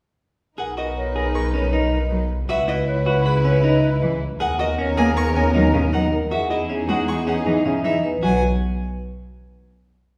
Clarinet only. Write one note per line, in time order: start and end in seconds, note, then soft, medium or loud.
0.58 0.72 A#4 soft
0.77 0.91 A#4 soft
0.96 1.10 A#4 medium
1.16 1.29 A#4 medium
1.35 1.48 A#4 medium
1.54 1.67 A#4 medium
1.73 1.86 A#4 medium
1.92 2.06 A#4 soft
2.11 2.24 A#4 soft
2.50 2.63 B4 soft
2.68 2.82 B4 medium
2.88 3.01 B4 medium
3.07 3.20 B4 medium
3.26 3.39 B4 medium
3.45 3.58 B4 medium
3.64 3.77 B4 medium
3.83 3.96 B4 medium
4.02 4.15 B4 soft
4.40 4.54 A#4 soft
4.59 4.73 A#4 medium
4.78 4.92 A#4 medium
4.98 5.11 A#4 medium
5.17 5.30 A#4 medium
5.36 5.49 A#4 medium
5.55 5.68 A#4 medium
5.74 5.88 A#4 medium
5.94 6.07 A#4 soft
6.32 6.45 G#4 soft
6.50 6.64 G#4 soft
6.70 6.83 G#4 medium
6.89 7.02 G#4 medium
7.08 7.21 G#4 medium
7.27 7.40 G#4 medium
7.46 7.59 G#4 medium
7.65 7.79 G#4 soft
7.84 7.98 G#4 soft